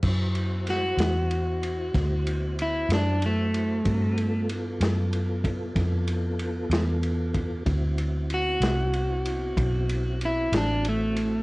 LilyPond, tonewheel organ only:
\new Staff \with { instrumentName = "Tonewheel organ" } { \time 12/8 \key d \mixolydian \tempo 4. = 63 <e' fis' c''>1. | <c' fis' bes''>8 <b f' a'>1~ <b f' a'>4. | <c' e' fis'>1. | }